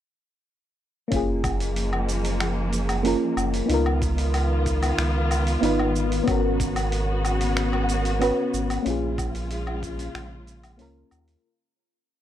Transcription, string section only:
1.12 3.67 F3 medium
1.12 3.67 G#3 medium
1.12 3.67 A#3 medium
3.69 6.25 D#3 medium
3.69 6.25 B3 medium
3.69 6.25 F4 medium
6.28 8.83 C#3 medium
6.28 8.83 B3 medium
6.28 8.83 F#4 medium
8.85 11.41 C#3 medium
8.85 11.41 G#3 medium
8.85 11.41 F4 medium

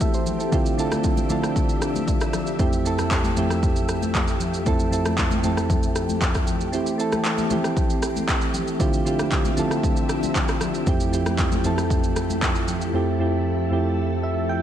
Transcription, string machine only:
0.00 0.50 E3 medium
0.00 0.51 A3 medium
0.00 2.55 C4 medium
0.00 2.55 G4 medium
0.53 6.69 F3 medium
0.53 2.57 D4 medium
0.53 6.69 E5 medium
2.59 8.76 A3 medium
2.59 12.90 G4 medium
6.73 8.78 E3 medium
6.73 8.78 C4 medium
8.80 14.62 F3 medium
8.80 10.85 C4 medium
8.80 10.85 D4 medium
8.80 10.85 E5 medium
10.87 14.62 A3 medium
10.87 14.62 E4 medium
12.94 14.62 A4 medium

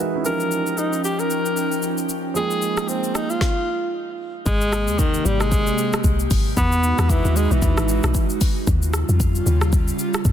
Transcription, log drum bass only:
4.46 4.89 G#1 loud
4.88 5.21 D#2 medium
5.25 5.71 G#1 loud
6.04 6.27 C2 medium
6.31 6.54 G#1 medium
6.57 6.93 E2 loud
6.98 7.21 E2 loud
7.25 7.48 D#2 loud
7.51 7.61 B1 medium
7.62 7.76 D#2 loud
7.77 8.00 G#1 medium
8.04 8.13 B1 medium
8.67 9.04 D#2 loud
9.09 9.42 F2 medium
9.46 9.92 D#2 loud
10.25 10.32 G2 loud

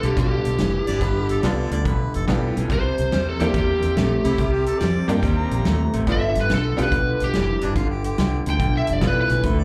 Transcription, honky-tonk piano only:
0.00 0.50 B3 medium
0.00 0.50 D4 medium
0.00 0.51 F4 medium
0.00 0.51 A4 medium
1.44 1.69 B3 medium
1.44 1.69 D4 medium
1.44 1.69 F4 medium
1.44 1.69 A4 medium
2.28 2.70 B3 medium
2.28 2.70 D4 medium
2.28 2.70 F4 medium
2.28 2.71 A4 medium
3.40 3.94 A#3 medium
3.40 3.94 D4 medium
3.40 3.94 E4 medium
3.40 3.94 G4 medium
5.08 5.62 A#3 medium
5.08 5.62 D4 medium
5.08 5.62 D#4 medium
5.08 5.63 G4 medium
6.08 6.33 B3 medium
6.08 6.33 D4 medium
6.08 6.34 F4 medium
6.08 6.34 A4 medium
6.77 6.90 B3 medium
6.77 6.90 D4 medium
6.77 6.91 F4 medium
6.77 6.91 G4 medium
9.01 9.27 B3 medium
9.01 9.27 D4 medium
9.01 9.28 F4 medium
9.01 9.28 A4 medium

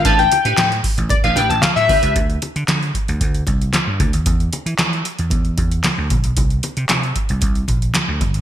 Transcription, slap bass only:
0.05 0.27 A1 loud
0.45 0.55 A2 medium
0.57 0.80 A2 loud
0.98 1.08 A1 medium
1.24 1.34 A1 medium
1.36 1.48 A1 medium
1.50 1.61 A1 medium
1.76 1.87 A2 medium
2.03 2.13 C#2 loud
2.16 2.38 D2 medium
2.56 2.66 D3 medium
2.68 2.90 D3 loud
3.09 3.19 D2 medium
3.21 3.43 D2 medium
3.47 3.69 C2 medium
3.87 3.98 G2 medium
4.00 4.11 D2 medium
4.13 4.24 D#2 medium
4.26 4.48 E2 medium
4.66 4.76 E3 medium
4.79 5.01 E3 loud
5.19 5.29 E2 medium
5.31 5.53 E2 medium
5.58 5.80 E2 medium
5.98 6.08 D2 medium
6.10 6.22 A#1 medium
6.24 6.34 B1 medium
6.37 6.59 C2 medium
6.77 6.87 C3 medium
6.89 7.11 C3 loud
7.30 7.40 C2 medium
7.42 7.64 C2 medium
7.68 7.90 A#1 medium
8.08 8.19 D2 medium
8.21 8.32 G1 medium
8.35 8.41 G#1 medium

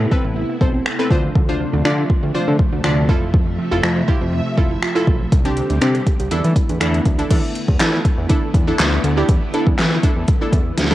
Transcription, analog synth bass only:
0.25 0.44 A1 medium
0.61 0.81 B1 medium
1.11 1.30 D2 loud
1.35 1.65 D2 loud
1.73 1.83 D2 medium
1.85 2.05 D3 loud
2.23 2.32 D2 medium
2.35 2.40 D3 soft
2.48 2.57 D3 loud
2.73 2.82 D2 medium
2.84 3.10 D2 loud
3.09 3.58 F2 loud
3.72 3.81 F1 medium
3.83 4.03 F2 loud
4.21 4.41 F2 medium
4.57 4.77 F1 medium
5.07 5.27 B1 loud
5.32 5.62 C2 loud
5.70 5.79 D2 medium
5.82 6.01 C3 loud
6.20 6.29 C2 medium
6.31 6.42 E2 loud
6.44 6.54 E3 loud
6.69 6.78 E2 medium
6.81 7.01 E2 loud
7.05 7.25 D2 loud
7.30 7.41 E2 loud
7.68 7.78 E2 medium
7.80 8.00 E3 loud
8.18 8.27 E2 loud
8.54 8.74 E2 medium
8.79 8.99 D2 loud
9.04 9.24 D2 medium
9.29 9.39 E2 loud
9.67 9.76 E2 medium
9.78 9.98 E3 loud
10.16 10.26 E2 medium
10.53 10.72 E2 medium
10.78 10.95 D2 medium

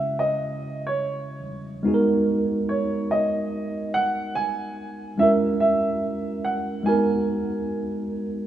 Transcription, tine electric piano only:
0.00 1.38 C#3 medium
0.00 1.39 G#3 soft
0.00 1.39 C#4 medium
0.00 1.40 E4 soft
0.00 1.40 F#4 medium
0.00 1.41 B4 medium
1.83 5.13 G#3 medium
1.83 5.14 B3 medium
1.83 5.14 D#4 medium
1.83 5.15 F#4 medium
1.88 1.94 G#4 medium
1.94 5.19 A#4 medium
5.18 6.81 G#3 medium
5.18 6.82 C#4 soft
5.18 6.82 E4 medium
5.18 6.83 F#4 soft
5.22 6.84 A#4 medium
6.83 8.47 G#3 medium
6.83 6.93 A#3 soft
6.83 8.47 D#4 medium
6.83 8.47 F#4 medium
6.89 8.47 B3 medium
6.89 8.47 A#4 medium

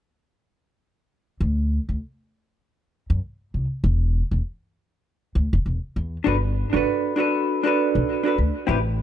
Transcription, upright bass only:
1.40 1.77 D2 medium
1.89 1.97 D2 medium
3.10 3.18 F#2 medium
3.54 3.64 C2 medium
3.84 4.20 E1 medium
4.31 4.39 E1 medium
5.35 5.46 D2 medium
5.53 5.60 E1 medium
5.66 5.76 E1 medium
5.96 6.16 E2 medium
6.27 6.63 G1 medium
6.74 6.81 G1 medium
7.95 8.03 B1 medium
8.38 8.49 D2 medium
8.69 9.02 A1 medium

